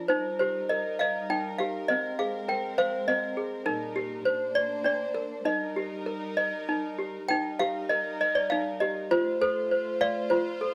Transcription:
Already playing: toy piano F4
0.08 string section G3 D#4 A#4, toy piano D#4 C5
0.39 toy piano G4 C5
0.69 toy piano A#4 D#5
0.99 toy piano D#5 F5
1.30 toy piano D#4 G5
1.58 toy piano G4 F5
1.88 string section G#3 C4, toy piano C4 D#5
2.19 toy piano G#4 F5
2.48 toy piano A#4 G5
2.78 toy piano C5 F5
3.08 toy piano C4 D#5
3.37 toy piano G#4
3.66 string section A#2 G3 D#4, toy piano D#4 A#4
3.96 toy piano G4
4.25 string section A#3 D4 C5, toy piano C5
4.55 toy piano D5
4.84 toy piano D4 D5
5.14 toy piano A#4
5.45 string section G3 D#4 A#4, toy piano D#4 D#5
5.76 toy piano G4
6.06 toy piano A#4
6.37 toy piano D#5
6.69 toy piano D#4
6.98 toy piano G4
7.29 string section G3 D#4 A#4, toy piano D#4 G5
7.59 toy piano G4 F5
7.89 toy piano A#4 D#5
8.21 toy piano D#5
8.35 toy piano D5
8.50 toy piano D#4 F5
8.80 toy piano G4 D#5
9.11 string section A3 F4 C5, toy piano F4 C5
9.41 toy piano A4 C5
9.71 toy piano C5
10.01 toy piano D5 F5
10.30 toy piano F4 C5
10.61 toy piano A4

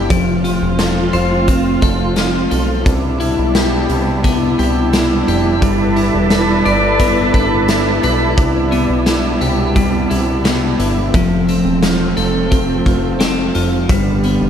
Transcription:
Already playing: clean electric guitar B3 E4 G4
0.09 analog synth bass F1, clean electric guitar F3, string section A3 C4 F4, kick, closed hi-hat
0.44 clean electric guitar F4, closed hi-hat
0.62 analog synth bass E1
0.79 clean electric guitar A4, snare, closed hi-hat
1.13 analog synth bass F1, clean electric guitar C5, closed hi-hat
1.48 clean electric guitar C4, kick, closed hi-hat
1.82 analog synth bass F1, clean electric guitar A4, kick, closed hi-hat
2.16 clean electric guitar F4, snare, closed hi-hat
2.51 analog synth bass B1, clean electric guitar A4, closed hi-hat
2.86 analog synth bass C2, string section B2 G3 B3 D4 E4, kick, closed hi-hat
3.20 clean electric guitar E4, closed hi-hat
3.39 analog synth bass B1
3.55 clean electric guitar G4, snare, closed hi-hat
3.89 analog synth bass C2, closed hi-hat
4.24 clean electric guitar B3, kick, closed hi-hat
4.59 analog synth bass C2, clean electric guitar G4, closed hi-hat
4.93 clean electric guitar E4, snare, closed hi-hat
5.28 analog synth bass F1, clean electric guitar G4, closed hi-hat
5.62 analog synth bass G1, clean electric guitar G3, string section A4 B4, kick, closed hi-hat
5.96 clean electric guitar E4, closed hi-hat
6.14 analog synth bass E1
6.30 clean electric guitar B4, snare, closed hi-hat
6.65 analog synth bass G1, clean electric guitar D5, closed hi-hat
6.99 clean electric guitar B3, kick, closed hi-hat
7.34 analog synth bass G1, clean electric guitar B4, kick, closed hi-hat
7.68 clean electric guitar E4, snare, closed hi-hat
8.03 analog synth bass B1, clean electric guitar B4, closed hi-hat
8.37 analog synth bass C2, string section B2 B3, kick, closed hi-hat
8.72 clean electric guitar B3, closed hi-hat
8.90 analog synth bass B1
9.06 clean electric guitar E4, snare, closed hi-hat
9.41 analog synth bass C2, clean electric guitar G4, closed hi-hat
9.76 clean electric guitar G3, kick, closed hi-hat
10.10 analog synth bass C2, clean electric guitar E4, closed hi-hat
10.45 clean electric guitar B3, snare, closed hi-hat
10.79 analog synth bass G1, clean electric guitar E4, closed hi-hat
11.14 analog synth bass F1, string section F3 A3 C4, clean electric guitar F3, kick, closed hi-hat
11.48 clean electric guitar C4, closed hi-hat
11.65 analog synth bass E1
11.83 clean electric guitar F4, snare, closed hi-hat
12.17 analog synth bass F1, clean electric guitar A4, closed hi-hat
12.51 clean electric guitar C4, kick, closed hi-hat
12.86 analog synth bass F1, clean electric guitar F4, kick, closed hi-hat
13.20 clean electric guitar C4, snare, closed hi-hat
13.55 analog synth bass F1, clean electric guitar F4, closed hi-hat
13.89 analog synth bass G1, string section D3 G3 B3, clean electric guitar G3, kick, closed hi-hat
14.23 clean electric guitar B3, closed hi-hat
14.41 analog synth bass F1

